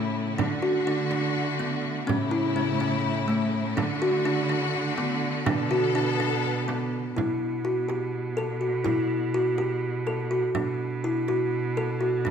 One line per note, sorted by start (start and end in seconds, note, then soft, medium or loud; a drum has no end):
0.00 0.40 A2 medium
0.00 0.35 C#3 medium
0.00 0.21 A3 medium
0.00 0.34 A3 medium
0.00 0.36 E4 medium
0.38 2.10 D3 medium
0.38 2.06 D3 medium
0.38 5.43 A3 medium
0.38 0.54 D4 medium
0.38 2.06 F#4 medium
0.38 frame drum medium
0.62 0.78 F#4 medium
0.87 1.03 D4 medium
1.11 1.43 D4 medium
1.11 frame drum soft
1.36 frame drum soft
1.59 1.91 B3 medium
1.59 frame drum soft
1.85 frame drum soft
2.07 3.77 A2 medium
2.07 3.76 C#3 medium
2.07 2.23 C#4 medium
2.07 3.76 E4 medium
2.07 frame drum medium
2.31 2.47 E4 medium
2.56 2.72 C#4 medium
2.80 3.12 C#4 medium
2.80 frame drum soft
3.05 frame drum soft
3.28 3.60 A3 medium
3.28 frame drum soft
3.53 frame drum soft
3.76 5.47 D3 medium
3.76 7.12 D3 medium
3.76 3.93 D4 medium
3.76 5.44 F#4 medium
3.76 frame drum medium
4.02 4.17 F#4 medium
4.25 4.41 D4 medium
4.49 4.81 D4 medium
4.49 frame drum soft
4.75 frame drum soft
4.98 5.29 B3 medium
4.98 frame drum soft
5.23 frame drum soft
5.46 7.12 B2 medium
5.46 7.14 B3 medium
5.46 5.62 D4 loud
5.46 7.14 A4 medium
5.46 frame drum medium
5.71 5.87 F#4 medium
5.95 6.11 D4 medium
6.20 6.51 D4 medium
6.20 frame drum soft
6.45 frame drum soft
6.68 7.00 B3 medium
6.68 frame drum medium
7.16 10.54 B2 medium
7.16 7.48 E4 medium
7.16 frame drum medium
7.65 7.80 F#4 medium
7.89 8.20 G4 medium
7.89 frame drum soft
8.37 8.53 A4 medium
8.37 frame drum soft
8.61 8.77 F#4 medium
8.84 9.16 E4 medium
8.84 frame drum medium
9.34 9.50 F#4 medium
9.58 9.90 G4 medium
9.58 frame drum soft
10.07 10.23 A4 medium
10.07 frame drum soft
10.31 10.47 F#4 medium
10.54 12.31 B2 medium
10.54 10.87 D4 medium
10.54 frame drum medium
11.04 11.20 E4 medium
11.28 11.60 F#4 medium
11.28 frame drum soft
11.77 11.92 A4 medium
11.77 frame drum soft
12.01 12.16 F#4 medium
12.25 12.31 D4 medium
12.25 frame drum medium